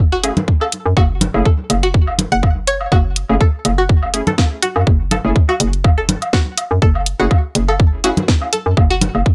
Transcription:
0.00 0.32 F#1 medium
0.12 0.17 F#4 loud
0.24 0.31 A3 medium
0.24 0.31 C#4 medium
0.24 0.31 E4 medium
0.24 0.31 G#4 loud
0.24 closed hi-hat medium
0.24 low woodblock soft
0.37 closed hi-hat soft
0.37 low conga medium
0.48 kick medium
0.61 0.64 A4 medium
0.61 low woodblock soft
0.72 closed hi-hat medium
0.86 0.94 F#2 medium
0.97 1.29 F#1 loud
0.97 1.02 F#4 loud
0.97 kick loud
0.97 low woodblock soft
1.21 closed hi-hat medium
1.21 low conga medium
1.34 1.43 F#1 medium
1.34 1.44 A3 medium
1.34 1.44 C#4 medium
1.34 1.44 E4 medium
1.34 1.44 G#4 loud
1.34 low woodblock soft
1.45 1.48 A4 medium
1.45 kick loud
1.70 2.27 F#1 medium
1.70 closed hi-hat medium
1.70 low woodblock soft
1.83 1.87 F#4 loud
1.83 closed hi-hat soft
1.94 kick loud
2.07 low woodblock soft
2.19 closed hi-hat medium
2.19 low conga medium
2.32 2.88 F#1 medium
2.32 2.36 F#5 loud
2.32 closed hi-hat soft
2.43 kick medium
2.43 low woodblock soft
2.67 2.75 C#5 loud
2.67 closed hi-hat medium
2.81 low woodblock soft
2.92 3.25 F#1 loud
2.92 2.97 F#4 loud
2.92 kick loud
2.92 low woodblock soft
3.16 closed hi-hat medium
3.29 3.38 F#1 medium
3.29 3.36 A3 medium
3.29 3.36 C#4 medium
3.29 3.36 E4 medium
3.29 3.36 G#4 loud
3.29 low woodblock soft
3.41 3.44 A4 medium
3.41 kick loud
3.65 4.22 F#1 medium
3.65 closed hi-hat medium
3.65 low woodblock soft
3.78 3.82 F#4 loud
3.89 kick loud
4.03 low woodblock soft
4.14 4.21 A3 medium
4.14 4.21 C#4 medium
4.14 4.21 E4 medium
4.14 4.21 G#4 loud
4.14 closed hi-hat medium
4.27 4.30 A4 medium
4.27 closed hi-hat soft
4.27 low conga medium
4.38 kick loud
4.38 snare loud
4.38 low woodblock soft
4.62 4.68 F#4 loud
4.62 closed hi-hat medium
4.76 4.84 F#2 medium
4.76 low woodblock soft
4.87 5.20 F#1 medium
4.87 kick loud
5.11 5.14 A4 medium
5.11 closed hi-hat medium
5.11 low conga medium
5.11 low woodblock soft
5.25 5.33 F#1 medium
5.25 5.35 A3 medium
5.25 5.35 C#4 medium
5.25 5.35 E4 medium
5.25 5.35 G#4 loud
5.36 kick loud
5.49 5.53 F#4 medium
5.49 low woodblock soft
5.60 6.17 F#1 loud
5.60 closed hi-hat medium
5.73 closed hi-hat soft
5.84 kick loud
5.84 low woodblock soft
5.98 6.00 A4 medium
6.09 closed hi-hat medium
6.09 low conga medium
6.22 closed hi-hat soft
6.22 low woodblock soft
6.33 6.38 F#4 loud
6.33 kick loud
6.33 snare loud
6.58 closed hi-hat medium
6.58 low woodblock soft
6.71 6.79 F#2 medium
6.82 7.15 F#1 loud
6.82 6.85 A4 medium
6.82 kick loud
6.95 low woodblock soft
7.06 closed hi-hat medium
7.20 7.28 F#1 medium
7.20 7.26 A3 loud
7.20 7.26 C#4 medium
7.20 7.26 E4 medium
7.20 7.24 F#4 loud
7.20 7.26 G#4 loud
7.31 kick loud
7.31 low woodblock soft
7.55 8.12 F#1 medium
7.55 closed hi-hat medium
7.68 7.71 A4 medium
7.68 low woodblock soft
7.80 kick loud
8.04 8.11 A3 medium
8.04 8.11 C#4 medium
8.04 8.11 E4 medium
8.04 8.09 F#4 loud
8.04 8.11 G#4 loud
8.04 closed hi-hat loud
8.04 low woodblock soft
8.17 closed hi-hat soft
8.17 low conga medium
8.28 kick loud
8.28 snare loud
8.42 low woodblock soft
8.53 8.56 A4 medium
8.53 closed hi-hat medium
8.66 8.75 F#2 medium
8.77 9.10 F#1 medium
8.77 kick loud
8.77 low woodblock soft
8.90 8.95 F#4 loud
9.01 closed hi-hat medium
9.01 low conga medium
9.15 9.23 F#1 medium
9.15 low woodblock soft
9.26 kick loud

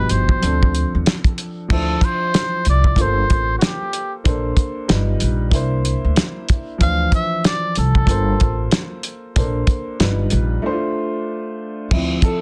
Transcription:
0.00 0.46 B2 medium
0.00 0.39 F3 medium
0.00 0.43 D#4 medium
0.00 0.43 G4 medium
0.00 0.12 B4 loud
0.09 0.36 G1 medium
0.09 1.06 C5 medium
0.09 closed hi-hat medium
0.29 kick medium
0.41 0.83 D2 medium
0.41 1.67 F3 medium
0.41 1.67 C4 medium
0.41 1.68 D4 medium
0.41 1.69 A4 medium
0.41 closed hi-hat medium
0.63 kick medium
0.75 closed hi-hat medium
0.95 1.04 E2 medium
1.06 snare loud
1.06 closed hi-hat medium
1.24 kick medium
1.24 closed hi-hat soft
1.38 closed hi-hat medium
1.68 1.95 D2 medium
1.68 2.94 F3 medium
1.68 2.95 D4 medium
1.68 2.96 E4 medium
1.68 2.96 C5 medium
1.68 kick loud
1.68 crash medium
1.72 2.06 A4 medium
2.01 2.67 C5 loud
2.01 kick medium
2.01 closed hi-hat medium
2.34 snare loud
2.34 closed hi-hat medium
2.65 2.91 C2 medium
2.65 closed hi-hat medium
2.69 3.03 D5 medium
2.84 kick medium
2.96 3.22 G1 loud
2.96 4.22 A#3 medium
2.96 4.23 F4 medium
2.96 4.23 A4 medium
2.96 kick medium
2.96 closed hi-hat medium
3.00 4.24 C5 medium
3.00 3.58 C5 medium
3.30 3.55 A1 medium
3.30 kick medium
3.30 closed hi-hat medium
3.58 3.66 F#4 medium
3.58 snare loud
3.58 closed hi-hat medium
3.65 4.14 G4 medium
3.93 closed hi-hat medium
4.24 4.51 A#1 medium
4.24 4.89 A#3 medium
4.24 4.89 D4 medium
4.24 4.89 A4 medium
4.24 4.90 C5 medium
4.24 kick loud
4.24 closed hi-hat medium
4.57 kick medium
4.57 closed hi-hat medium
4.88 5.14 G1 loud
4.88 5.53 G3 medium
4.88 5.53 D#4 medium
4.88 5.53 F4 medium
4.88 5.53 B4 medium
4.88 snare loud
4.88 closed hi-hat medium
5.20 5.52 A#1 medium
5.20 closed hi-hat medium
5.50 5.92 C2 loud
5.50 6.77 A#3 medium
5.50 6.77 D4 medium
5.50 6.78 E4 medium
5.50 kick loud
5.50 closed hi-hat medium
5.55 6.79 C5 medium
5.85 closed hi-hat medium
6.05 6.14 D2 medium
6.16 snare loud
6.16 closed hi-hat medium
6.49 kick medium
6.49 closed hi-hat medium
6.78 7.06 D2 loud
6.78 8.06 E3 medium
6.78 8.04 F3 medium
6.78 8.05 D4 medium
6.78 8.06 C5 medium
6.78 kick loud
6.78 closed hi-hat loud
6.82 7.11 F5 loud
7.12 7.43 E5 loud
7.12 kick medium
7.12 closed hi-hat medium
7.44 7.75 D5 medium
7.44 snare loud
7.44 closed hi-hat medium
7.75 8.02 C2 medium
7.75 8.69 A4 medium
7.75 closed hi-hat medium
7.95 kick medium
8.06 8.33 G1 loud
8.06 9.32 A#3 medium
8.06 9.33 F4 medium
8.06 9.34 A4 medium
8.06 kick loud
8.06 closed hi-hat medium
8.10 9.34 C5 medium
8.40 8.66 A1 medium
8.40 kick medium
8.40 closed hi-hat medium
8.71 snare loud
8.71 closed hi-hat medium
9.03 closed hi-hat medium
9.36 9.61 A#1 loud
9.36 10.00 A#3 medium
9.36 10.00 D4 medium
9.36 10.00 A4 medium
9.36 10.01 C5 medium
9.36 kick loud
9.36 closed hi-hat medium
9.67 kick medium
9.67 closed hi-hat medium
10.00 10.25 G1 loud
10.00 10.64 G3 medium
10.00 10.64 D#4 medium
10.00 10.64 F4 medium
10.00 10.64 B4 medium
10.00 snare loud
10.00 closed hi-hat medium
10.30 10.57 A#1 medium
10.30 closed hi-hat medium
10.62 11.88 A3 medium
10.62 11.89 D4 medium
10.62 10.72 E4 medium
10.62 11.90 C5 medium
10.71 11.93 F4 medium
11.91 12.16 D2 medium
11.91 12.36 F3 soft
11.91 12.37 C4 soft
11.91 12.37 E4 medium
11.91 kick loud
11.91 crash medium
12.22 12.41 A4 medium
12.22 kick medium
12.22 closed hi-hat medium

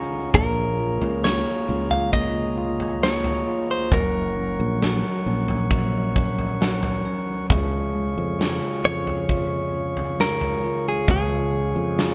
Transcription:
0.00 0.30 C#3 medium
0.00 0.35 C#4 medium
0.00 0.35 F4 medium
0.00 0.30 G#4 medium
0.00 0.35 C#5 medium
0.00 3.88 C#5 medium
0.00 0.36 D#5 medium
0.00 0.30 F5 medium
0.00 0.36 F5 medium
0.00 0.35 F#5 medium
0.00 0.36 G#5 medium
0.00 0.31 A#5 medium
0.00 0.30 C#6 medium
0.34 0.97 A#1 loud
0.34 1.22 A#3 medium
0.34 3.89 G#4 medium
0.34 1.24 A#4 medium
0.34 2.11 F5 medium
0.34 3.89 A#5 medium
0.34 kick loud
0.34 floor tom loud
0.79 1.67 F4 soft
1.02 1.43 C#2 medium
1.02 floor tom medium
1.23 2.12 A#3 medium
1.23 1.91 C#5 medium
1.23 snare loud
1.68 3.44 C#2 medium
1.68 2.56 F4 medium
1.91 2.13 F5 medium
1.91 floor tom medium
2.12 3.01 A#3 medium
2.12 3.90 D#5 medium
2.12 3.03 D#5 medium
2.12 kick medium
2.58 3.46 F4 medium
2.80 floor tom medium
3.03 3.89 A#3 medium
3.03 3.71 C#5 medium
3.03 snare loud
3.24 floor tom medium
3.48 3.91 F4 medium
3.71 3.93 C5 medium
3.92 4.55 F#1 loud
3.92 4.80 F#3 medium
3.92 7.47 A#4 medium
3.92 4.78 A#4 medium
3.92 7.47 C#5 medium
3.92 7.47 F#5 medium
3.92 7.47 C#6 medium
3.92 kick loud
3.92 floor tom loud
4.37 5.26 C#4 soft
4.60 5.01 A#1 medium
4.82 5.70 F#3 medium
4.82 snare loud
5.26 7.01 A#1 medium
5.26 6.15 C#4 medium
5.48 floor tom medium
5.71 6.60 F#3 medium
5.71 kick loud
6.16 7.04 C#4 medium
6.16 kick medium
6.38 floor tom medium
6.61 7.48 F#3 medium
6.61 7.03 F#5 medium
6.61 snare loud
6.83 floor tom medium
7.05 7.49 C#4 medium
7.05 7.47 C#5 medium
7.50 8.13 C#2 loud
7.50 8.83 C#3 medium
7.50 12.14 G#4 medium
7.50 12.14 C#5 medium
7.50 12.14 F5 medium
7.50 12.14 C#6 medium
7.50 kick loud
7.50 floor tom loud
7.95 9.70 G#3 soft
8.18 8.59 F2 medium
8.39 9.28 F4 medium
8.39 snare loud
8.84 10.60 F2 medium
8.84 9.73 C#3 medium
8.84 10.20 C#5 loud
9.07 floor tom medium
9.29 10.63 F4 medium
9.29 kick medium
9.75 11.08 C#3 medium
9.97 floor tom medium
10.19 11.52 G#3 medium
10.19 10.88 A#4 medium
10.19 snare loud
10.41 floor tom medium
10.64 11.97 F4 medium
10.88 11.10 G#4 medium
11.08 11.72 C#2 loud
11.08 12.14 C#3 medium
11.08 12.14 G#4 medium
11.08 kick loud
11.08 floor tom loud
11.54 12.14 G#3 medium
11.76 12.14 F2 medium
11.98 12.14 F4 medium
11.98 snare loud

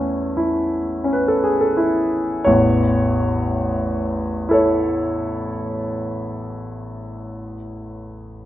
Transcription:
0.00 2.46 E2 medium
0.00 0.11 A3 medium
0.00 0.77 C#4 medium
0.00 1.10 A4 medium
0.37 1.46 E4 medium
1.04 2.19 C#4 medium
1.13 1.28 B4 medium
1.28 1.44 A4 medium
1.44 1.59 G#4 medium
1.61 1.76 A4 medium
1.77 2.47 E4 medium
2.44 5.51 A1 medium
2.44 5.50 E2 medium
2.44 4.52 C#5 medium
4.49 7.53 E4 soft
4.49 7.55 A4 medium
4.53 7.57 C#5 soft

